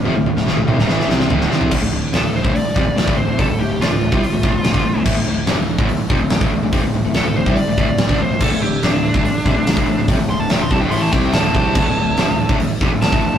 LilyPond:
<<
  \new Staff \with { instrumentName = "Lead electric guitar" } { \time 4/4 \key d \minor \tempo 4 = 143 r1 | r4 a'8 c''8 d''4 d''8 c''8 | a'8 g'8 f'2. | r1 |
r4 a'8 c''8 d''4 d''8 c''8 | a'8 g'8 d'2. | r8 c'''16 a''16 g''16 c'''16 a''16 g''16 c'''16 a''16 g''8 a''4~ | a''2 r4 a''4 | }
  \new Staff \with { instrumentName = "Analog synth pad" } { \time 4/4 \key d \minor <d' a' f''>1 | r1 | r1 | r1 |
r1 | <d' a' e''>1~ | <d' a' e''>1~ | <d' a' e''>1 | }
  \new Staff \with { instrumentName = "Distorted electric guitar" } { \clef bass \time 4/4 \key d \minor <f, c>16 <d, a,>16 <d, a,>16 <d, a,>16 <d, a,>16 <d, a,>16 <c g>16 <d, a,>16 <a, e a>8 <c g c'>8 <d, a, d>8 <c g c'>8 | <d, a,>16 <d, a,>16 <d, a,>8 <f, c>16 <d, a,>8 <d, a,>16 <d, a,>16 r16 <f, c>16 <d, a,>16 <d, a,>16 <d, a,>16 <d, a,>16 <d, a,>16 | <f, c>16 <d, a,>16 <d, a,>16 <d, a,>16 <d, a,>16 <d, a,>16 <d, a,>16 <c g>16 r16 <d, a,>16 <d, a,>16 <d, a,>16 <d, a,>16 <g, d>16 <d, a,>16 <d, a,>16 | <d, a,>16 <d, a,>16 <d, a,>8 <f, c>16 <d, a,>8 <d, a,>16 <d, a,>16 r16 <f, c>16 <d, a,>16 <d, a,>16 <d, a,>16 <d, a,>16 <d, a,>16 |
<f, c>16 <d, a,>16 <d, a,>16 <d, a,>16 <d, a,>16 <d, a,>16 <d, a,>16 <c g>16 r16 <d, a,>16 <d, a,>16 <d, a,>16 <d, a,>16 <g, d>16 <d, a,>16 <d, a,>16 | <d, a,>16 <d, a,>16 <d, a,>8 <f, c>16 <d, a,>8 <d, a,>16 <d, a,>16 r16 <f, c>16 <d, a,>16 <d, a,>16 <d, a,>16 <d, a,>16 <d, a,>16 | <f, c>16 <d, a,>16 <d, a,>16 <d, a,>16 <d, a,>16 <d, a,>16 <c g>16 <d, a,>16 <a, e a>8 <c g c'>8 <d, a, d>8 <c g c'>8 | <d, a,>16 <d, a,>16 <d, a,>8 <f, c>16 <d, a,>8 <d, a,>16 <d, a,>16 r16 <f, c>16 <d, a,>16 <d, a,>16 <d, a,>16 <d, a,>16 <d, a,>16 | }
  \new Staff \with { instrumentName = "Distorted electric guitar" } { \clef bass \time 4/4 \key d \minor <f, c>16 <d, a,>16 <d, a,>16 <d, a,>16 <d, a,>16 <d, a,>16 <c g>16 <d, a,>16 <a, e a>8 <c g c'>8 <d, a, d>8 <c g c'>8 | <d, a,>16 <d, a,>16 <d, a,>8 <f, c>16 <d, a,>8 <d, a,>16 <d, a,>16 r16 <f, c>16 <d, a,>16 <d, a,>16 <d, a,>16 <d, a,>16 <d, a,>16 | <f, c>16 <d, a,>16 <d, a,>16 <d, a,>16 <d, a,>16 <d, a,>16 <d, a,>16 <c g>16 r16 <d, a,>16 <d, a,>16 <d, a,>16 <d, a,>16 <g, d>16 <d, a,>16 <d, a,>16 | <d, a,>16 <d, a,>16 <d, a,>8 <f, c>16 <d, a,>8 <d, a,>16 <d, a,>16 r16 <f, c>16 <d, a,>16 <d, a,>16 <d, a,>16 <d, a,>16 <d, a,>16 |
<f, c>16 <d, a,>16 <d, a,>16 <d, a,>16 <d, a,>16 <d, a,>16 <d, a,>16 <c g>16 r16 <d, a,>16 <d, a,>16 <d, a,>16 <d, a,>16 <g, d>16 <d, a,>16 <d, a,>16 | <d, a,>16 <d, a,>16 <d, a,>8 <f, c>16 <d, a,>8 <d, a,>16 <d, a,>16 r16 <f, c>16 <d, a,>16 <d, a,>16 <d, a,>16 <d, a,>16 <d, a,>16 | <f, c>16 <d, a,>16 <d, a,>16 <d, a,>16 <d, a,>16 <d, a,>16 <c g>16 <d, a,>16 <a, e a>8 <c g c'>8 <d, a, d>8 <c g c'>8 | <d, a,>16 <d, a,>16 <d, a,>8 <f, c>16 <d, a,>8 <d, a,>16 <d, a,>16 r16 <f, c>16 <d, a,>16 <d, a,>16 <d, a,>16 <d, a,>16 <d, a,>16 | }
  \new Staff \with { instrumentName = "Fingered electric bass" } { \clef bass \time 4/4 \key d \minor f,,16 d,,16 d,,16 d,,16 d,,16 d,,16 c,16 d,,16 a,,8 c,8 d,,8 c,8 | d,,16 d,,16 d,,8 f,,16 d,,8 d,,16 d,,16 r16 f,,16 d,,16 d,,16 d,,16 d,,16 d,,16 | f,,16 d,,16 d,,16 d,,16 d,,16 d,,16 d,,16 c,16 r16 d,,16 d,,16 d,,16 d,,16 g,,16 d,,16 d,,16 | d,,16 d,,16 d,,8 f,,16 d,,8 d,,16 d,,16 r16 f,,16 d,,16 d,,16 d,,16 d,,16 d,,16 |
f,,16 d,,16 d,,16 d,,16 d,,16 d,,16 d,,16 c,16 r16 d,,16 d,,16 d,,16 d,,16 g,,16 d,,16 d,,16 | d,,16 d,,16 d,,8 f,,16 d,,8 d,,16 d,,16 r16 f,,16 d,,16 d,,16 d,,16 d,,16 d,,16 | f,,16 d,,16 d,,16 d,,16 d,,16 d,,16 c,16 d,,16 a,,8 c,8 d,,8 c,8 | d,,16 d,,16 d,,8 f,,16 d,,8 d,,16 d,,16 r16 f,,16 d,,16 d,,16 d,,16 d,,16 d,,16 | }
  \new DrumStaff \with { instrumentName = "Drums" } \drummode { \time 4/4 tommh16 tommh16 tommh16 sn16 sn16 toml16 toml16 sn16 sn16 sn16 sn16 sn16 tomfh16 sn16 sn16 tomfh16 | <cymc bd>4 <hho sn>8 sn16 bd16 hho8 bd8 <hho sn>16 bd8. | <hho bd>4 <hho sn>8. bd16 hho8 bd8 <hho sn>16 bd8. | <cymc bd>4 <hho sn>8. bd16 hho8 bd8 <hho sn>16 bd8. |
<hho bd>4 <hho sn>8. bd16 hho8 bd8 <hho sn>16 bd8. | <cymc bd>4 <hho sn>8. bd16 hho8 bd8 <hho sn>16 bd8. | <hho bd>4 <hho sn>8 bd8 hho8 bd8 <hho sn>8 bd8 | <cymc bd>4 <hho sn>8. bd16 hho8 bd8 <hho sn>16 bd8. | }
>>